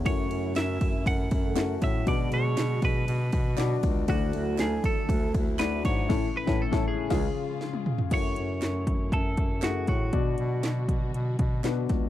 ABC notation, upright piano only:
X:1
M:4/4
L:1/16
Q:1/4=119
K:F#m
V:1 name="Upright piano"
[A,CEFc]6- [A,CEFc] z4 z [A,CEFA]3 z | [DFB]6- [DFB] z4 z [DFd]3 z | [A,DEFd]6- [A,DEFd] z4 z [A,DEFd]3 z | [A,,CEA]2 z [A,,CEA]2 [A,,CEA]2 z [C,C^EG]2 z6 |
[A,EFc]6- [A,EFc] z4 z [A,EFG]3 z | [B,DFd]6- [B,DFd] z4 z [B,DFB]3 z |]
V:2 name="Upright piano" clef=bass
z16 | B,,6 z8 z2 | D,6 z8 z2 | z16 |
z16 | B,,6 z8 z2 |]